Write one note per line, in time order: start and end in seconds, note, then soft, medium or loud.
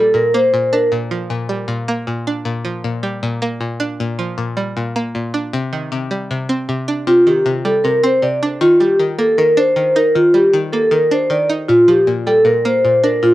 0.00 0.13 A#2 medium
0.00 0.53 F3 medium
0.00 0.92 G3 medium
0.00 0.13 A4 medium
0.14 0.52 A#2 medium
0.14 0.32 A#4 medium
0.34 1.30 A#3 medium
0.34 0.70 C5 medium
0.54 0.91 A#2 medium
0.73 1.69 D4 medium
0.73 0.90 A#4 medium
0.92 1.29 A#2 medium
1.11 2.07 F3 medium
1.30 1.67 A#2 medium
1.49 2.46 G3 medium
1.68 2.06 A#2 loud
1.88 2.84 A#3 medium
2.07 2.44 A#2 medium
2.27 3.23 D4 medium
2.45 2.83 A#2 loud
2.65 3.61 F3 medium
2.84 3.22 A#2 medium
3.03 3.99 G3 medium
3.23 3.59 A#2 loud
3.42 4.38 A#3 medium
3.61 3.99 A#2 medium
3.80 4.76 D4 medium
4.00 4.37 A#2 loud
4.19 5.15 F3 medium
4.38 4.75 A#2 medium
4.57 5.53 G3 medium
4.77 5.14 A#2 medium
4.96 5.53 A#3 medium
5.15 5.53 A#2 medium
5.34 5.53 D4 medium
5.53 5.91 C3 loud
5.73 6.69 D#3 medium
5.92 6.29 C3 medium
6.11 7.07 G3 medium
6.31 6.68 C3 medium
6.49 7.46 C4 medium
6.69 7.06 C3 medium
6.88 7.84 D4 medium
7.07 7.44 C3 loud
7.07 7.25 F4 loud
7.27 8.23 D#3 medium
7.27 7.44 G4 medium
7.46 7.83 C3 medium
7.65 8.61 G3 medium
7.65 7.82 A4 medium
7.84 8.21 C3 medium
7.84 8.01 A#4 medium
8.03 8.61 C4 medium
8.03 8.21 C5 medium
8.22 8.61 C3 medium
8.22 8.40 D5 medium
8.43 8.61 D4 medium
8.61 8.98 D#3 loud
8.61 8.78 F4 loud
8.80 9.76 G3 medium
8.80 8.98 G4 medium
8.99 9.37 D#3 medium
9.18 10.15 A#3 medium
9.18 9.36 A4 medium
9.38 9.75 D#3 medium
9.38 9.55 A#4 loud
9.57 10.53 D4 loud
9.57 9.93 C5 medium
9.76 10.14 D#3 medium
9.96 10.92 D#4 medium
9.96 10.13 A#4 medium
10.15 10.52 D#3 medium
10.15 10.32 F4 loud
10.34 11.30 G3 medium
10.34 10.52 G4 medium
10.53 10.90 D#3 medium
10.73 11.69 A#3 medium
10.73 10.90 A4 medium
10.91 11.29 D#3 medium
10.91 11.09 A#4 medium
11.11 11.69 D4 medium
11.11 11.28 C5 medium
11.30 11.69 D#3 medium
11.30 11.48 D5 medium
11.49 11.69 D#4 medium
11.69 12.06 A#2 loud
11.69 11.86 F4 loud
11.88 12.84 F3 medium
11.88 12.05 G4 medium
12.07 12.44 A#2 medium
12.27 13.23 G3 medium
12.27 12.44 A4 loud
12.45 12.83 A#2 medium
12.45 12.63 A#4 medium
12.65 13.34 A#3 medium
12.65 13.01 C5 medium
12.85 13.21 A#2 medium
13.03 13.34 D4 medium
13.03 13.21 A#4 medium
13.23 13.34 A#2 loud
13.23 13.34 F4 loud